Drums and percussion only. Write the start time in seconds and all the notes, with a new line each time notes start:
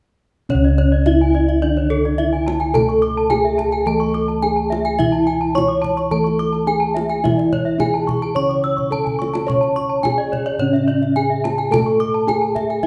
0.50 kendang low
0.64 kendang slap
0.78 kendang slap
1.06 kendang slap, kendang high, kendang low
1.34 kendang slap
1.49 kendang slap
1.77 kendang slap
1.92 kendang slap
2.05 kendang slap
2.48 kendang slap, kendang high
2.61 kendang slap
2.75 kendang high, kendang low
2.90 kendang slap
3.02 kendang slap
3.30 kendang slap, kendang high, kendang low
3.59 kendang slap, kendang low
3.72 kendang slap
4.00 kendang slap
4.15 kendang slap
4.29 kendang slap
4.72 kendang slap, kendang high
4.86 kendang slap
5.00 kendang low
5.14 kendang slap
5.30 kendang slap
5.58 kendang slap, kendang high, kendang low
5.84 kendang low
5.99 kendang slap
6.27 kendang slap
6.41 kendang slap
6.54 kendang slap
6.97 kendang slap, kendang high
7.11 kendang slap
7.25 kendang high, kendang low
7.39 kendang slap
7.53 kendang slap, kendang low
7.80 kendang slap, kendang high, kendang low
8.09 kendang slap, kendang low
8.24 kendang slap
8.51 kendang slap
8.65 kendang slap
8.78 kendang low
8.92 kendang low
9.07 kendang low
9.22 kendang high
9.35 kendang high
9.50 kendang low
9.63 kendang slap
9.78 kendang slap
10.05 kendang slap, kendang high, kendang low
10.33 kendang slap, kendang low
10.47 kendang slap
10.76 kendang slap
10.89 kendang slap
11.03 kendang slap
11.45 kendang slap, kendang high
11.59 kendang slap
11.74 kendang high, kendang low
11.87 kendang slap
12.01 kendang slap
12.29 kendang slap, kendang high, kendang low
12.56 kendang slap, kendang low
12.70 kendang slap